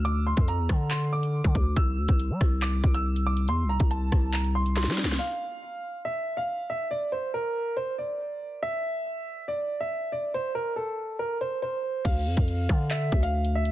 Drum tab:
CC |------------------------------------------------|------------------------------------------------|------------------------------------------------|------------------------------------------------|
HH |x--------x--x-----x-----x--------x-----x--------|x--------x--x-----x--------------x-----x-----x--|x--------x--x-----x-----x--x-----x-----x--o-----|------------------------------------------------|
CP |------------------------x-----------------------|------------------------x-----------------------|------------------------x-----------------------|------------------------------------------------|
SD |------------------r-----------------------------|------------------r-----------------------------|------------------r-----------------o-o-o-o-o-o-|------------------------------------------------|
BD |---------o--------o--------------------o--o-----|o--------o--------o-----------o-----------------|---------o--------o-----------------------------|------------------------------------------------|

CC |------------------------------------------------|------------------------------------------------|------------------------------------------------|x-----------------------------------------------|
HH |------------------------------------------------|------------------------------------------------|------------------------------------------------|x--------x--x-----x--------------x-----x-----x--|
CP |------------------------------------------------|------------------------------------------------|------------------------------------------------|------------------------x-----------------------|
SD |------------------------------------------------|------------------------------------------------|------------------------------------------------|------------------r-----------------------------|
BD |------------------------------------------------|------------------------------------------------|------------------------------------------------|o--------o--------o-----------o-----------------|